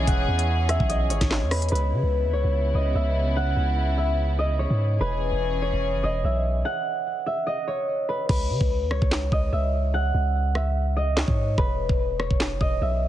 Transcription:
0.00 1.68 E3 medium
0.00 1.68 C#4 medium
0.00 1.68 G#4 medium
0.00 0.48 B4 loud
0.00 0.96 C#5 medium
0.00 0.69 E5 medium
0.07 0.27 E1 loud
0.07 1.68 F#5 loud
0.07 kick loud
0.07 closed hi-hat medium
0.28 0.78 E2 loud
0.39 closed hi-hat medium
0.69 0.95 E5 medium
0.69 cross-stick medium
0.69 closed hi-hat loud
0.80 1.12 B1 loud
0.80 kick loud
0.89 2.68 D#5 medium
0.89 closed hi-hat medium
1.10 1.20 G#1 loud
1.10 2.33 C#5 medium
1.10 closed hi-hat medium
1.21 1.43 G#1 loud
1.21 kick medium
1.21 snare medium
1.21 closed hi-hat medium
1.31 snare loud
1.31 clap medium
1.42 1.70 E2 loud
1.51 1.71 B4 medium
1.51 cross-stick loud
1.51 open hi-hat medium
1.62 closed hi-hat medium
1.69 1.94 C#2 loud
1.69 4.97 C#3 medium
1.69 4.97 B3 medium
1.69 4.97 E4 medium
1.69 3.77 B4 loud
1.69 closed hi-hat medium
1.75 closed hi-hat medium
1.92 2.03 C#3 loud
2.03 2.25 C#2 loud
2.24 2.35 D#2 medium
2.33 2.44 C#2 medium
2.33 4.24 C#5 medium
2.44 2.73 C#2 loud
2.74 2.94 C#2 loud
2.74 3.01 D#5 medium
2.95 3.54 C#2 loud
2.95 3.97 E5 medium
3.36 4.97 F#5 medium
3.57 4.66 C#2 loud
3.97 4.45 E5 medium
4.39 6.03 D#5 medium
4.59 5.62 C#5 medium
4.70 4.99 G#2 loud
5.00 5.31 E1 loud
5.00 6.63 E3 medium
5.00 6.63 C#4 medium
5.00 6.63 G#4 medium
5.00 7.06 B4 loud
5.32 5.71 E1 loud
5.62 7.53 C#5 medium
5.73 5.95 E1 loud
5.94 6.03 F#1 loud
6.03 6.23 E1 loud
6.03 6.30 D#5 medium
6.24 6.63 B1 loud
6.24 7.26 E5 medium
6.65 8.26 F#5 loud
7.26 7.53 E5 medium
7.47 9.25 D#5 medium
7.67 8.90 C#5 medium
8.09 8.29 B4 medium
8.29 8.51 C#2 loud
8.29 10.34 B4 loud
8.29 kick loud
8.29 crash loud
8.50 8.60 C#3 loud
8.61 8.83 C#2 loud
8.61 kick loud
8.81 8.92 D#2 loud
8.91 9.01 C#2 loud
8.91 10.82 C#5 medium
8.91 cross-stick medium
9.02 9.31 C#2 loud
9.02 kick medium
9.11 snare loud
9.11 clap medium
9.32 9.52 C#2 loud
9.32 9.59 D#5 medium
9.32 kick medium
9.53 10.12 C#2 loud
9.53 10.55 E5 medium
9.94 11.55 F#5 loud
10.14 11.24 C#2 loud
10.55 11.03 E5 medium
10.55 cross-stick medium
10.97 12.60 D#5 medium
11.17 12.19 C#5 medium
11.17 snare loud
11.17 clap medium
11.28 11.57 G#2 loud
11.28 kick loud
11.58 11.88 E1 loud
11.58 13.08 B4 loud
11.58 kick loud
11.89 12.29 E1 loud
11.89 kick loud
12.20 13.08 C#5 medium
12.20 cross-stick medium
12.31 12.53 E1 loud
12.31 kick medium
12.40 snare loud
12.40 clap loud
12.51 12.60 F#1 loud
12.61 12.80 E1 loud
12.61 12.88 D#5 medium
12.61 kick medium
12.81 13.08 B1 loud
12.81 13.08 E5 medium

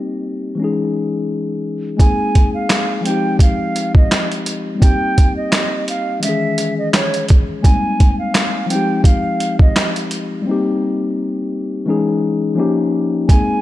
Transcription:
0.00 0.52 G3 medium
0.00 0.53 A#3 medium
0.00 0.55 C4 medium
0.00 0.56 D#4 medium
0.00 0.57 G4 medium
0.55 1.95 E3 medium
0.55 1.96 G#3 medium
0.60 1.97 C#4 medium
0.60 1.99 D#4 medium
0.64 2.00 G#4 medium
1.97 3.02 G#3 medium
1.97 3.05 A#3 medium
1.97 3.04 C4 medium
1.97 3.06 D#4 medium
1.97 2.51 G#5 medium
1.97 kick loud
1.97 closed hi-hat medium
2.02 3.07 G#4 medium
2.35 kick medium
2.35 closed hi-hat medium
2.54 3.02 F5 medium
2.70 snare loud
2.70 clap medium
2.70 closed hi-hat loud
3.01 4.76 F3 medium
3.01 4.77 G#3 medium
3.05 4.78 C4 medium
3.05 4.80 D#4 medium
3.05 3.37 G5 medium
3.05 closed hi-hat medium
3.10 4.81 G4 medium
3.39 3.92 F5 medium
3.39 kick medium
3.39 closed hi-hat loud
3.76 closed hi-hat medium
3.95 4.28 D#5 medium
3.95 kick medium
4.12 snare loud
4.12 clap medium
4.12 closed hi-hat medium
4.32 closed hi-hat medium
4.46 closed hi-hat medium
4.75 6.17 G3 medium
4.75 6.18 A#3 medium
4.80 6.19 C4 medium
4.80 6.20 D#4 medium
4.80 5.33 G5 loud
4.80 kick loud
4.80 closed hi-hat medium
4.85 6.22 G4 medium
5.18 kick medium
5.18 closed hi-hat medium
5.37 5.85 D#5 medium
5.52 snare loud
5.52 clap medium
5.52 closed hi-hat loud
5.88 6.20 F5 medium
5.88 closed hi-hat medium
6.20 7.60 E3 medium
6.20 7.61 G#3 medium
6.20 6.75 E5 medium
6.20 closed hi-hat loud
6.24 7.63 D#3 medium
6.24 7.62 C#4 medium
6.29 7.64 G#4 medium
6.58 closed hi-hat medium
6.78 6.92 D#5 medium
6.93 7.25 C#5 medium
6.93 snare loud
6.93 clap medium
6.93 closed hi-hat loud
7.14 closed hi-hat medium
7.28 kick medium
7.28 closed hi-hat medium
7.62 8.69 G#3 medium
7.62 8.70 A#3 medium
7.62 8.69 C4 medium
7.62 8.71 D#4 medium
7.62 8.15 G#5 medium
7.62 kick loud
7.62 closed hi-hat medium
7.66 8.67 G3 medium
8.00 kick medium
8.00 closed hi-hat medium
8.19 8.67 F5 medium
8.35 snare loud
8.35 clap medium
8.35 closed hi-hat loud
8.66 10.41 F3 medium
8.66 8.76 G3 soft
8.66 9.02 G5 medium
8.70 10.43 C4 medium
8.70 10.45 D#4 medium
8.70 closed hi-hat medium
8.75 10.46 G#3 medium
8.75 10.46 G4 medium
9.04 9.57 F5 medium
9.04 kick medium
9.04 closed hi-hat loud
9.40 closed hi-hat medium
9.59 9.92 D#5 medium
9.59 kick medium
9.76 snare loud
9.76 clap medium
9.76 closed hi-hat medium
9.96 closed hi-hat medium
10.11 closed hi-hat medium
10.42 11.83 G3 medium
10.42 11.84 A#3 medium
10.47 11.85 C4 medium
10.47 11.86 D#4 medium
10.51 11.87 G4 medium
11.86 12.57 E3 medium
11.86 12.58 G#3 medium
11.86 12.56 C#4 medium
11.86 12.57 D#4 medium
11.90 12.60 G#4 medium
12.55 13.27 F3 medium
12.55 13.28 A#3 medium
12.55 13.28 C#4 medium
12.55 13.29 D#4 medium
12.60 13.30 G4 medium
13.28 13.62 G#3 medium
13.28 13.62 A#3 medium
13.28 13.62 C4 medium
13.28 13.62 G#5 loud
13.28 kick loud
13.28 closed hi-hat medium
13.32 13.62 D#4 medium
13.32 13.62 G#4 medium

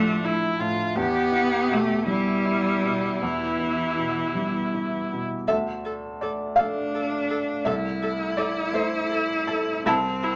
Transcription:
0.00 0.93 D2 medium
0.00 0.59 A2 soft
0.00 0.46 F3 soft
0.00 0.25 A3 medium
0.00 0.94 A3 medium
0.00 0.26 D4 medium
0.00 0.98 D4 medium
0.00 0.24 E4 medium
0.00 0.93 E5 medium
0.24 0.82 E4 medium
0.24 0.62 E4 medium
0.59 0.96 A2 soft
0.59 0.97 F4 medium
0.96 3.17 E2 medium
0.96 5.49 B3 medium
0.96 1.74 B3 medium
0.96 2.05 G4 medium
0.96 5.49 G4 medium
0.96 5.45 E5 medium
1.32 1.92 E4 soft
1.69 2.30 B2 soft
1.69 2.08 A3 medium
2.06 2.68 G3 soft
2.06 3.25 G3 medium
2.06 3.18 E4 soft
2.45 3.06 E4 soft
2.84 3.44 B2 soft
3.21 5.45 E2 soft
3.21 5.12 E3 medium
3.21 5.24 E4 soft
3.59 4.19 E4 soft
3.97 4.57 B2 soft
4.35 4.96 G3 soft
4.74 5.35 E4 soft
5.12 5.49 B2 soft
5.48 6.56 D2 medium
5.48 9.83 A3 medium
5.48 5.56 A4 medium
5.48 9.83 A4 medium
5.48 7.63 D5 medium
5.48 6.18 E5 medium
5.85 5.93 A4 soft
6.21 6.30 A4 medium
6.21 6.55 D5 medium
6.56 7.62 A3 soft
6.56 7.63 D4 medium
6.56 6.67 A4 soft
6.56 7.63 A4 soft
6.56 7.63 D5 soft
6.56 7.61 F5 medium
6.95 7.03 A4 soft
7.30 7.38 A4 medium
7.64 8.71 C2 medium
7.64 7.74 A4 medium
7.64 10.36 E5 medium
7.64 8.34 E5 medium
7.69 9.84 E4 medium
8.02 8.10 A4 medium
8.37 8.46 A4 medium
8.37 8.71 D5 medium
8.73 9.82 A3 soft
8.73 9.46 A4 soft
8.73 8.82 A4 medium
8.73 9.45 C5 medium
8.73 9.82 E5 soft
9.11 9.19 A4 medium
9.47 9.83 A4 medium
9.47 9.55 A4 medium
9.85 10.36 C2 medium
9.85 10.36 C4 medium
9.85 9.94 E4 medium
9.85 10.36 G4 medium
9.85 10.36 A5 medium
10.23 10.31 E4 medium

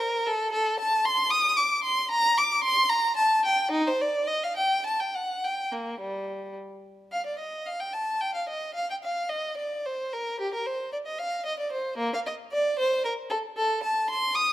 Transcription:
0.00 0.27 A#4 medium
0.26 0.51 A4 medium
0.52 0.79 A4 loud
0.79 1.06 A5 loud
1.05 1.32 C6 loud
1.30 1.58 D#6 loud
1.57 1.84 D6 medium
1.83 2.10 C6 loud
2.11 2.38 A#5 loud
2.37 2.65 D6 medium
2.63 2.90 C6 loud
2.90 3.17 A#5 loud
3.16 3.44 A5 medium
3.45 3.73 G5 medium
3.71 3.86 D#4 loud
3.87 4.01 C5 medium
4.01 4.28 D5 medium
4.27 4.41 D#5 medium
4.44 4.56 F5 medium
4.56 4.83 G5 medium
4.86 4.99 A5 medium
5.00 5.13 G5 medium
5.15 5.42 F#5 medium
5.44 5.71 G5 medium
5.72 5.99 A#3 medium
6.01 6.55 G3 medium
7.12 7.25 F5 medium
7.26 7.40 D5 medium
7.39 7.67 D#5 medium
7.66 7.81 F5 medium
7.80 7.94 G5 medium
7.93 8.21 A5 medium
8.21 8.35 G5 medium
8.34 8.48 F5 medium
8.49 8.76 D#5 medium
8.74 8.89 F5 medium
8.90 8.96 G5 medium
9.03 9.29 F5 medium
9.29 9.56 D#5 medium
9.57 9.84 D5 medium
9.86 10.12 C5 medium
10.13 10.40 A#4 medium
10.40 10.53 G4 medium
10.54 10.66 A#4 medium
10.66 10.92 C5 medium
10.93 10.98 D5 medium
11.06 11.18 D#5 medium
11.19 11.44 F5 medium
11.46 11.58 D#5 medium
11.59 11.72 D5 medium
11.72 11.99 C5 medium
11.98 12.12 A#3 medium
12.14 12.19 F5 medium
12.26 12.34 D#5 medium
12.52 12.78 D5 medium
12.79 13.04 C5 medium
13.05 13.13 A#4 medium
13.30 13.38 A4 medium
13.57 13.83 A4 medium
13.83 14.09 A5 medium
14.10 14.36 C6 loud
14.35 14.53 D#6 loud

